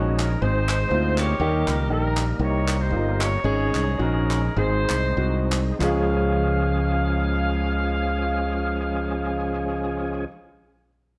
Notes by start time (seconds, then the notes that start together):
Already playing: A#1 G#2 G#3 C#4 D#4 F#4
0.19 A#4, clap
0.40 G#1 G#2 G#3 C4 C#4 D#4 G#4 C5
0.47 D#4
0.69 clap
0.90 D2 C4 D#4 F4
1.18 G4 A#4 C#5, clap
1.40 D#2 D#3 G3 A#3 D#4 G4
1.67 C#2 A#4, clap
1.89 A#1 A#3 D#4 G4 A#4
2.17 clap
2.39 C2 A#3 D#4 G4 A#4 C#5
2.68 clap
2.80 D#4 G4 C5
2.90 G1 A#3 D#4 F4
3.21 C#5, clap
3.44 G#1 G#2 G#3 C#4 D#4 G#4 C#5
3.75 C2, clap
3.98 A#1 C#4 D#4 F#4 A#4
4.31 clap
4.56 G#1 G#2 G#3 A#3 C4 D#4 G#4 C5
4.61 C4
4.89 C2, clap
5.17 C2 C4 D#4 F#4
5.52 clap
5.79 C#2 F3 G#3 C#4 G#4 F5, clap